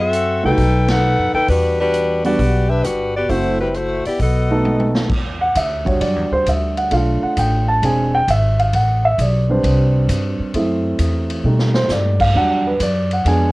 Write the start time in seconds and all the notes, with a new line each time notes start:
Already playing: F#2
0.00 C4 F#4 A4 E5
0.13 closed hi-hat
0.43 C2 G3 A3 D#4 F#4 A4 B4 G5
0.58 B1, kick, open hi-hat
0.88 D#4 A4 B4 F#5, snare, ride
1.19 F#2
1.34 D#2 D#4 A4 B4 G5
1.48 E2 G3 D4 F#4 B4, kick, open hi-hat
1.80 G3 D4 F#4 B4
1.94 closed hi-hat
2.24 G3 B3 D4 F#4 G4 D5, open hi-hat
2.39 B1, kick, open hi-hat
2.68 D4 G4 B4 E5
2.84 G1 G3 D4 F#4 B4, cross-stick, closed hi-hat
3.16 B3 F#4 G4 D5
3.29 F#1 A3 C4 E4 F#4 C5, kick, open hi-hat
3.60 G3 C4 E4 B4
3.74 A3 E4 F#4 C5, closed hi-hat
4.05 B3 E4 G4 D5, muted upright bass stroke, open hi-hat
4.20 B1 B3 F#4 A4 D#5, kick, open hi-hat
4.50 A3 B3 D#4 A4
4.65 high tom
4.80 high tom
4.95 snare
5.10 E2, kick, crash
5.41 F#5
5.55 D2 E5, kick, hi-hat pedal, ride
5.85 G3 D4 F#4 C#5, kick, ride
6.01 F#2 D5, kick, ride
6.16 E2
6.31 D2 C5
6.46 D2 E5, kick, hi-hat pedal, ride
6.77 F#5, ride
6.91 B1 A3 D4 F4 F5, kick, ride
7.23 F#5, muted upright bass stroke
7.36 A1 G5, kick, hi-hat pedal, ride
7.68 A5
7.82 E1 G#3 C4 D4 G#5, kick, ride
8.14 G5
8.27 G#1 E5, kick, hi-hat pedal, ride
8.59 F5, ride
8.73 A1 F#5, kick, ride
9.05 E5
9.18 B1 D5, kick, hi-hat pedal, ride
9.49 G3 C4 D4 B4 C5
9.63 C2, kick, ride
10.09 G2, kick, hi-hat pedal, ride
10.39 muted upright bass stroke
10.54 F#2 A3 C4 E4, kick, ride
10.98 E2, kick, hi-hat pedal, ride
11.30 ride
11.44 B2 G3 A3 D#4
11.59 snare
11.74 C5, snare
11.89 G2 D5, snare, hi-hat pedal
12.20 F5, kick, crash
12.35 E2 F#3 G3 D4 F#5, kick
12.67 B4
12.80 F#2 D5, kick, hi-hat pedal, ride
13.11 F#5, ride
13.25 F2 G#3 B3 D4 G#5, kick, ride